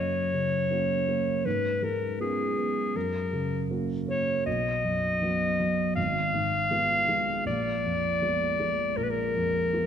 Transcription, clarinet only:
0, 0, Header, 1, 2, 480
1, 0, Start_track
1, 0, Tempo, 751880
1, 929, Time_signature, 4, 2, 24, 8
1, 6298, End_track
2, 0, Start_track
2, 0, Title_t, "Clarinet"
2, 0, Program_c, 0, 71
2, 0, Note_on_c, 0, 73, 58
2, 928, Note_on_c, 0, 71, 55
2, 937, Note_off_c, 0, 73, 0
2, 1170, Note_on_c, 0, 70, 54
2, 1180, Note_off_c, 0, 71, 0
2, 1405, Note_off_c, 0, 70, 0
2, 1409, Note_on_c, 0, 68, 54
2, 1891, Note_on_c, 0, 70, 53
2, 1901, Note_off_c, 0, 68, 0
2, 2370, Note_off_c, 0, 70, 0
2, 2610, Note_on_c, 0, 73, 61
2, 2834, Note_off_c, 0, 73, 0
2, 2846, Note_on_c, 0, 75, 66
2, 3789, Note_off_c, 0, 75, 0
2, 3801, Note_on_c, 0, 77, 71
2, 4739, Note_off_c, 0, 77, 0
2, 4765, Note_on_c, 0, 74, 63
2, 5724, Note_on_c, 0, 70, 59
2, 5734, Note_off_c, 0, 74, 0
2, 5764, Note_on_c, 0, 71, 48
2, 5774, Note_off_c, 0, 70, 0
2, 5808, Note_on_c, 0, 70, 61
2, 5817, Note_off_c, 0, 71, 0
2, 6298, Note_off_c, 0, 70, 0
2, 6298, End_track
0, 0, End_of_file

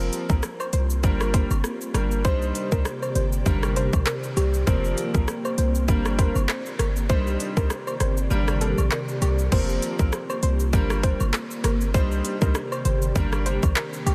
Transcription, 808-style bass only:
0, 0, Header, 1, 2, 480
1, 0, Start_track
1, 0, Key_signature, -2, "minor"
1, 0, Tempo, 606061
1, 1780, Time_signature, 4, 2, 24, 8
1, 11206, End_track
2, 0, Start_track
2, 0, Title_t, "808-style bass"
2, 0, Program_c, 0, 38
2, 235, Note_on_c, 0, 34, 100
2, 331, Note_off_c, 0, 34, 0
2, 579, Note_on_c, 0, 36, 83
2, 821, Note_on_c, 0, 31, 109
2, 833, Note_off_c, 0, 36, 0
2, 1163, Note_off_c, 0, 31, 0
2, 1193, Note_on_c, 0, 31, 91
2, 1290, Note_off_c, 0, 31, 0
2, 1538, Note_on_c, 0, 31, 94
2, 1781, Note_on_c, 0, 36, 102
2, 1793, Note_off_c, 0, 31, 0
2, 1999, Note_off_c, 0, 36, 0
2, 2155, Note_on_c, 0, 36, 96
2, 2251, Note_off_c, 0, 36, 0
2, 2498, Note_on_c, 0, 31, 101
2, 2718, Note_off_c, 0, 31, 0
2, 2741, Note_on_c, 0, 31, 109
2, 3083, Note_off_c, 0, 31, 0
2, 3115, Note_on_c, 0, 34, 90
2, 3211, Note_off_c, 0, 34, 0
2, 3459, Note_on_c, 0, 36, 96
2, 3678, Note_off_c, 0, 36, 0
2, 3700, Note_on_c, 0, 29, 105
2, 3919, Note_off_c, 0, 29, 0
2, 4075, Note_on_c, 0, 34, 104
2, 4171, Note_off_c, 0, 34, 0
2, 4420, Note_on_c, 0, 36, 86
2, 4660, Note_on_c, 0, 31, 110
2, 4672, Note_off_c, 0, 36, 0
2, 5003, Note_off_c, 0, 31, 0
2, 5033, Note_on_c, 0, 31, 91
2, 5130, Note_off_c, 0, 31, 0
2, 5379, Note_on_c, 0, 31, 92
2, 5621, Note_on_c, 0, 36, 107
2, 5633, Note_off_c, 0, 31, 0
2, 5839, Note_off_c, 0, 36, 0
2, 5995, Note_on_c, 0, 36, 101
2, 6091, Note_off_c, 0, 36, 0
2, 6340, Note_on_c, 0, 31, 96
2, 6558, Note_off_c, 0, 31, 0
2, 6579, Note_on_c, 0, 31, 107
2, 6922, Note_off_c, 0, 31, 0
2, 6954, Note_on_c, 0, 34, 97
2, 7050, Note_off_c, 0, 34, 0
2, 7300, Note_on_c, 0, 36, 97
2, 7518, Note_off_c, 0, 36, 0
2, 7540, Note_on_c, 0, 29, 103
2, 7759, Note_off_c, 0, 29, 0
2, 7915, Note_on_c, 0, 34, 98
2, 8011, Note_off_c, 0, 34, 0
2, 8259, Note_on_c, 0, 36, 91
2, 8500, Note_on_c, 0, 31, 117
2, 8512, Note_off_c, 0, 36, 0
2, 8843, Note_off_c, 0, 31, 0
2, 8874, Note_on_c, 0, 31, 88
2, 8970, Note_off_c, 0, 31, 0
2, 9220, Note_on_c, 0, 31, 94
2, 9460, Note_on_c, 0, 36, 111
2, 9471, Note_off_c, 0, 31, 0
2, 9678, Note_off_c, 0, 36, 0
2, 9835, Note_on_c, 0, 36, 97
2, 9931, Note_off_c, 0, 36, 0
2, 10179, Note_on_c, 0, 31, 98
2, 10398, Note_off_c, 0, 31, 0
2, 10420, Note_on_c, 0, 31, 114
2, 10763, Note_off_c, 0, 31, 0
2, 10795, Note_on_c, 0, 34, 100
2, 10891, Note_off_c, 0, 34, 0
2, 11139, Note_on_c, 0, 36, 98
2, 11206, Note_off_c, 0, 36, 0
2, 11206, End_track
0, 0, End_of_file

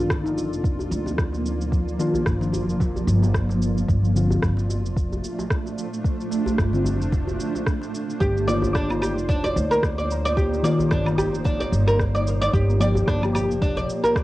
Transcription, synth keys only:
0, 0, Header, 1, 2, 480
1, 0, Start_track
1, 0, Tempo, 540541
1, 1530, Time_signature, 4, 2, 24, 8
1, 12640, End_track
2, 0, Start_track
2, 0, Title_t, "Synth keys"
2, 0, Program_c, 0, 88
2, 0, Note_on_c, 0, 51, 85
2, 0, Note_on_c, 0, 58, 76
2, 0, Note_on_c, 0, 62, 82
2, 0, Note_on_c, 0, 65, 96
2, 189, Note_off_c, 0, 51, 0
2, 191, Note_off_c, 0, 58, 0
2, 194, Note_off_c, 0, 62, 0
2, 197, Note_off_c, 0, 65, 0
2, 208, Note_on_c, 0, 63, 78
2, 221, Note_on_c, 0, 58, 72
2, 232, Note_on_c, 0, 62, 72
2, 245, Note_on_c, 0, 65, 86
2, 1736, Note_off_c, 0, 63, 0
2, 1743, Note_off_c, 0, 58, 0
2, 1748, Note_off_c, 0, 62, 0
2, 1755, Note_off_c, 0, 65, 0
2, 1759, Note_on_c, 0, 51, 90
2, 1766, Note_on_c, 0, 58, 84
2, 1772, Note_on_c, 0, 62, 88
2, 1777, Note_on_c, 0, 65, 107
2, 2108, Note_off_c, 0, 51, 0
2, 2111, Note_off_c, 0, 58, 0
2, 2114, Note_off_c, 0, 62, 0
2, 2117, Note_off_c, 0, 65, 0
2, 2138, Note_on_c, 0, 51, 73
2, 2145, Note_on_c, 0, 58, 67
2, 2151, Note_on_c, 0, 62, 65
2, 2156, Note_on_c, 0, 65, 75
2, 2224, Note_off_c, 0, 51, 0
2, 2227, Note_off_c, 0, 58, 0
2, 2230, Note_off_c, 0, 62, 0
2, 2233, Note_off_c, 0, 65, 0
2, 3682, Note_on_c, 0, 50, 88
2, 3690, Note_on_c, 0, 60, 78
2, 3701, Note_on_c, 0, 65, 95
2, 4029, Note_off_c, 0, 50, 0
2, 4033, Note_off_c, 0, 60, 0
2, 4039, Note_off_c, 0, 65, 0
2, 5977, Note_on_c, 0, 50, 71
2, 5986, Note_on_c, 0, 60, 69
2, 5995, Note_on_c, 0, 65, 78
2, 6063, Note_off_c, 0, 50, 0
2, 6068, Note_off_c, 0, 60, 0
2, 6072, Note_off_c, 0, 65, 0
2, 7523, Note_on_c, 0, 51, 82
2, 7531, Note_on_c, 0, 58, 79
2, 7539, Note_on_c, 0, 65, 99
2, 7869, Note_off_c, 0, 51, 0
2, 7873, Note_off_c, 0, 58, 0
2, 7878, Note_off_c, 0, 65, 0
2, 7889, Note_on_c, 0, 63, 82
2, 7906, Note_on_c, 0, 58, 76
2, 7923, Note_on_c, 0, 65, 88
2, 9417, Note_off_c, 0, 63, 0
2, 9425, Note_off_c, 0, 58, 0
2, 9434, Note_off_c, 0, 65, 0
2, 9436, Note_on_c, 0, 51, 93
2, 9446, Note_on_c, 0, 58, 91
2, 9453, Note_on_c, 0, 65, 110
2, 9786, Note_off_c, 0, 51, 0
2, 9791, Note_off_c, 0, 58, 0
2, 9795, Note_off_c, 0, 65, 0
2, 9814, Note_on_c, 0, 51, 75
2, 9822, Note_on_c, 0, 58, 71
2, 9832, Note_on_c, 0, 65, 85
2, 9902, Note_off_c, 0, 51, 0
2, 9906, Note_off_c, 0, 58, 0
2, 9910, Note_off_c, 0, 65, 0
2, 11359, Note_on_c, 0, 53, 91
2, 11368, Note_on_c, 0, 58, 82
2, 11377, Note_on_c, 0, 67, 94
2, 11707, Note_off_c, 0, 53, 0
2, 11712, Note_off_c, 0, 58, 0
2, 11716, Note_off_c, 0, 67, 0
2, 11729, Note_on_c, 0, 53, 79
2, 11746, Note_on_c, 0, 58, 77
2, 11762, Note_on_c, 0, 67, 98
2, 12640, Note_off_c, 0, 53, 0
2, 12640, Note_off_c, 0, 58, 0
2, 12640, Note_off_c, 0, 67, 0
2, 12640, End_track
0, 0, End_of_file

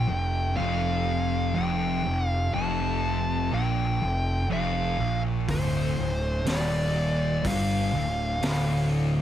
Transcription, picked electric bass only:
0, 0, Header, 1, 2, 480
1, 0, Start_track
1, 0, Tempo, 981997
1, 765, Time_signature, 4, 2, 24, 8
1, 4506, End_track
2, 0, Start_track
2, 0, Title_t, "Picked electric bass"
2, 0, Program_c, 0, 34
2, 44, Note_on_c, 0, 29, 72
2, 268, Note_off_c, 0, 29, 0
2, 287, Note_on_c, 0, 29, 96
2, 747, Note_off_c, 0, 29, 0
2, 768, Note_on_c, 0, 29, 93
2, 990, Note_off_c, 0, 29, 0
2, 1005, Note_on_c, 0, 29, 84
2, 1229, Note_off_c, 0, 29, 0
2, 1249, Note_on_c, 0, 29, 88
2, 1708, Note_off_c, 0, 29, 0
2, 1726, Note_on_c, 0, 34, 86
2, 1949, Note_off_c, 0, 34, 0
2, 1965, Note_on_c, 0, 29, 89
2, 2189, Note_off_c, 0, 29, 0
2, 2198, Note_on_c, 0, 29, 100
2, 2425, Note_off_c, 0, 29, 0
2, 2444, Note_on_c, 0, 34, 98
2, 2668, Note_off_c, 0, 34, 0
2, 2682, Note_on_c, 0, 26, 82
2, 2907, Note_off_c, 0, 26, 0
2, 2925, Note_on_c, 0, 26, 83
2, 3149, Note_off_c, 0, 26, 0
2, 3161, Note_on_c, 0, 27, 97
2, 3623, Note_off_c, 0, 27, 0
2, 3641, Note_on_c, 0, 31, 80
2, 3866, Note_off_c, 0, 31, 0
2, 3878, Note_on_c, 0, 26, 89
2, 4103, Note_off_c, 0, 26, 0
2, 4114, Note_on_c, 0, 26, 98
2, 4506, Note_off_c, 0, 26, 0
2, 4506, End_track
0, 0, End_of_file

